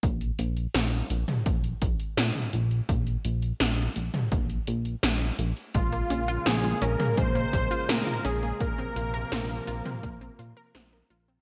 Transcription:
<<
  \new Staff \with { instrumentName = "Analog synth lead" } { \time 4/4 \key bes \minor \tempo 4 = 84 r1 | r1 | f'4 aes'8 bes'8 c''4 bes'8 aes'8 | bes'2. r4 | }
  \new Staff \with { instrumentName = "Synth arpeggio sound" } { \time 4/4 \key bes \minor r1 | r1 | aes16 bes16 des'16 f'16 aes'16 f'16 des'16 bes16 aes16 bes16 des'16 f'16 aes'16 f'16 des'16 bes16 | bes16 c'16 f'16 bes'16 c''16 bes'16 f'16 c'16 bes16 c'16 f'16 bes'16 c''16 bes'16 f'16 c'16 | }
  \new Staff \with { instrumentName = "Analog synth pad" } { \clef bass \time 4/4 \key bes \minor r1 | r1 | <des aes bes>1 | <c f bes>1 | }
  \new Staff \with { instrumentName = "Analog synth bass" } { \clef bass \time 4/4 \key bes \minor bes,,8 bes,,8 bes,,8 bes,,8 bes,,8 bes,,8 bes,8 bes,,8 | bes,,8 bes,,8 bes,,8 bes,,8 bes,,8 bes,,8 bes,,8 bes,,8 | bes,,8 bes,,8 bes,,8 bes,,8 bes,,8 bes,,8 bes,8 bes,,8 | bes,,8 bes,,8 bes,,8 bes,,8 bes,,8 bes,8 bes,,8 bes,,8 | }
  \new DrumStaff \with { instrumentName = "Drums" } \drummode { \time 4/4 <hh bd>16 hh16 hh16 hh16 <hh sn>16 hh16 hh16 <hh toml>16 <hh bd>16 hh16 <hh bd>16 hh16 <hh sn>16 <hh toml>16 hh16 hh16 | <hh bd>16 hh16 hh16 hh16 <hh sn>16 hh16 hh16 <hh toml>16 <hh bd>16 hh16 hh16 hh16 <hh sn>16 hh16 hh16 hh16 | <hh bd>16 hh16 hh16 hh16 <hh sn>16 hh16 hh16 <hh toml>16 <hh bd>16 hh16 <hh bd>16 hh16 <hh sn>16 <hh toml>16 hh16 hh16 | <hh bd>16 hh16 hh16 hh16 <hh sn>16 hh16 hh16 <hh toml>16 <hh bd>16 hh16 hh16 hh16 <hh sn>16 hh16 hh16 hh16 | }
>>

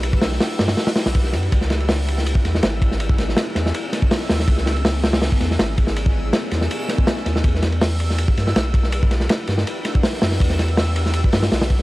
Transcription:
<<
  \new Staff \with { instrumentName = "Synth texture" } { \time 4/4 \key e \lydian \tempo 4 = 162 e'''1 | e'''1~ | e'''1~ | e'''1~ |
e'''1~ | e'''1~ | e'''1~ | e'''1 | }
  \new Staff \with { instrumentName = "Ambient pad" } { \time 4/4 \key e \lydian <d' e' fis' g' b'>2. r4 | <b cis' dis' e' gis'>2. r4 | <b cis' dis' e' gis'>2. r4 | <b cis' dis' e' gis'>2. r4 |
<b cis' dis' e' gis'>2. r4 | <d' e' fis' g' b'>2. r4 | <d' e' fis' g' b'>2. r4 | <d' e' fis' g' b'>2. r4 | }
  \new Staff \with { instrumentName = "Sub bass" } { \clef bass \time 4/4 \key e \lydian b,,4 r8 g,8 r8. b,,8. fis,8 | cis,2~ cis,16 r16 e,8 gis,,4~ | gis,,4 r8 e,8 r4. dis,8 | cis,2~ cis,16 r16 e,8 gis,,4~ |
gis,,4 r8 e,8 r4. dis,8 | e,2~ e,16 r16 g,8 b,,4~ | b,,4 r8 g,8 r4. fis,8 | e,2~ e,16 r16 g,8 b,,4 | }
  \new DrumStaff \with { instrumentName = "Drums" } \drummode { \time 4/4 cymr16 bd16 <hho sn>16 sn16 <hho sn>8 <hho sn>16 <hho sn>16 <hho sn>16 <hho sn>16 <hho sn>16 <hho sn>16 <bd cymr>16 sn16 <cymr sn>16 cymr16 | <bd cymr>16 sn16 <cymr sn>16 cymr16 <hho sn>8 cymr16 sn16 cymr16 bd16 <cymr sn>16 sn16 <cymr sn>8 <bd cymr>16 sn16 | cymr16 bd16 <cymr sn>16 sn16 <cymr sn>8 <cymr sn>16 sn16 cymr8 <cymr sn>16 bd16 <hho sn>16 sn16 <hho sn>16 sn16 | <bd cymr>16 sn16 <cymr sn>16 cymr16 <hho sn>8 <hho sn>16 <hho sn>16 <hho sn>16 bd16 <cymr sn>16 sn16 <cymr sn>8 <bd cymr>16 sn16 |
cymr16 bd8. <cymr sn>8 <cymr sn>16 sn16 cymr8 <cymr sn>16 bd16 <cymr sn>16 sn16 <cymr sn>16 sn16 | <bd cymr>16 sn16 <cymr sn>16 cymr16 <hho sn>8 cymr16 sn16 cymr16 bd16 <cymr sn>16 sn16 <cymr sn>8 <bd cymr>16 sn16 | cymr16 bd16 <cymr sn>16 sn16 <cymr sn>8 <cymr sn>16 sn16 cymr8 <cymr sn>16 bd16 <hho sn>16 sn16 <hho sn>16 sn16 | <bd cymr>16 sn16 <cymr sn>16 cymr16 <hho sn>8 cymr16 sn16 cymr16 bd16 <hho sn>16 <hho sn>16 <hho sn>16 <hho sn>16 <bd cymr>8 | }
>>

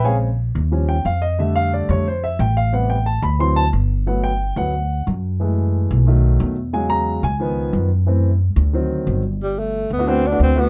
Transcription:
<<
  \new Staff \with { instrumentName = "Grand piano" } { \time 4/4 \key d \mixolydian \tempo 4 = 180 <gis' cis'' eis'' gis''>8 r2 g''8 eis''8 dis''8 | e''8 f''8 d''8 cis''8 c''8 e''8 g''8 f''8 | fis''8 g''8 a''8 b''8 c'''8 a''8 r4 | fis''8 g''4 fis''4. r4 |
r1 | gis''8 ais''4 gis''4. r4 | r1 | \key g \major r4. r16 <a b d' fis'>16 <a b d' fis'>8 r16 <a b d' fis'>8 r16 <a b d' fis'>8 | }
  \new Staff \with { instrumentName = "Grand piano" } { \clef bass \time 4/4 \key d \mixolydian <cis gis c'>8 r4. <eis g cis'>8 r4. | <d g a>4. <d g a>8 r2 | <c g b>8 r4. <e fis c'>8 r4. | <fis a b>8 r4 <fis a b>8 r2 |
<e gis a>2 <dis fis a>4. r8 | <cis fis gis>4. r8 <dis eis b>4. r8 | <e a c'>8 r4. <ees fis c'>4. r8 | \key g \major r1 | }
  \new Staff \with { instrumentName = "Tenor saxophone" } { \time 4/4 \key d \mixolydian r1 | r1 | r1 | r1 |
r1 | r1 | r1 | \key g \major g8 a4 b8 c'8 d'8 c'8 b8 | }
  \new Staff \with { instrumentName = "Upright bass" } { \clef bass \time 4/4 \key d \mixolydian ais,,4. dis,4. eis,4~ | eis,4. f,4. a,,4~ | a,,4. d,4. g,,4~ | g,,4. d,4. fis,4~ |
fis,4. b,,4. e,4~ | e,4. cis,4. fis,4~ | fis,4. d,4. g,,4~ | \key g \major g,,4. d,4. d,4 | }
>>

